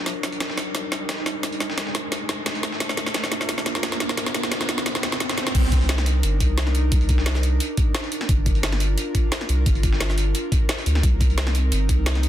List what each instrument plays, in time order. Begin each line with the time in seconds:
Already playing: analog synth pad D4 A#4, riser
0.06 sub bass C2, analog synth pad D#4, snare, closed hi-hat
0.23 snare, closed hi-hat
0.32 closed hi-hat
0.40 snare, closed hi-hat
0.50 snare
0.58 snare, closed hi-hat
0.75 sub bass G1, snare, closed hi-hat
0.92 sub bass C2, snare, closed hi-hat
1.09 snare, closed hi-hat
1.26 snare, closed hi-hat
1.43 sub bass C2, snare, closed hi-hat
1.52 closed hi-hat
1.60 snare, closed hi-hat
1.70 snare
1.78 snare, closed hi-hat
1.87 snare
1.95 snare, closed hi-hat
2.12 snare, closed hi-hat
2.29 snare, closed hi-hat
2.46 snare, closed hi-hat
2.55 closed hi-hat
2.63 snare, closed hi-hat
2.72 snare
2.80 sub bass G1, analog synth pad D4 F4 A#4, snare, closed hi-hat
2.89 snare
2.97 snare, closed hi-hat
3.06 snare, closed hi-hat
3.14 snare, closed hi-hat
3.24 snare
3.32 snare, closed hi-hat
3.41 snare
3.49 snare, closed hi-hat
3.58 snare
3.66 snare, closed hi-hat
3.75 snare
3.83 snare, closed hi-hat
3.92 snare
4.00 sub bass C2, snare, closed hi-hat
4.09 snare
4.17 sub bass G1, snare, closed hi-hat
4.26 snare, closed hi-hat
4.35 snare, closed hi-hat
4.43 snare
4.52 snare, closed hi-hat
4.61 snare
4.69 snare, closed hi-hat
4.78 snare
4.86 snare, closed hi-hat
4.95 snare, closed hi-hat
5.03 snare, closed hi-hat
5.12 snare
5.20 snare, closed hi-hat
5.29 snare, closed hi-hat
5.38 sub bass D2, snare, closed hi-hat
5.47 snare, closed hi-hat
5.55 sub bass C2, analog synth pad D4 D#4 A#4, kick, closed hi-hat, crash
5.72 kick, closed hi-hat
5.81 closed hi-hat
5.89 snare, closed hi-hat
5.98 snare
6.06 closed hi-hat
6.23 sub bass G1, closed hi-hat
6.40 sub bass C2, kick, closed hi-hat
6.58 snare, closed hi-hat
6.67 snare
6.75 closed hi-hat
6.92 sub bass C2, kick, closed hi-hat
7.01 closed hi-hat
7.09 kick, closed hi-hat
7.18 snare
7.26 snare, closed hi-hat
7.35 snare
7.43 closed hi-hat
7.60 closed hi-hat
7.77 kick, closed hi-hat
7.95 snare, closed hi-hat
8.04 closed hi-hat
8.12 closed hi-hat
8.21 snare
8.29 sub bass G1, analog synth pad F4 A#4, kick, closed hi-hat
8.46 kick, closed hi-hat
8.55 closed hi-hat
8.63 snare, closed hi-hat
8.72 snare
8.80 closed hi-hat
8.98 closed hi-hat
9.15 kick, closed hi-hat
9.32 snare, closed hi-hat
9.41 snare
9.49 sub bass C2, closed hi-hat
9.66 sub bass G1, kick, closed hi-hat
9.75 closed hi-hat
9.83 kick, closed hi-hat
9.93 snare
10.01 snare, closed hi-hat
10.10 snare
10.18 closed hi-hat
10.35 closed hi-hat
10.52 kick, closed hi-hat
10.69 snare, closed hi-hat
10.78 closed hi-hat
10.86 sub bass D2, closed hi-hat
10.95 snare
11.03 sub bass C2, analog synth pad C4 D#4, kick, closed hi-hat
11.20 kick, closed hi-hat
11.30 closed hi-hat
11.38 snare, closed hi-hat
11.47 snare
11.55 closed hi-hat
11.72 sub bass G1, closed hi-hat
11.89 sub bass C2, kick, closed hi-hat
12.06 snare, closed hi-hat
12.15 snare
12.23 closed hi-hat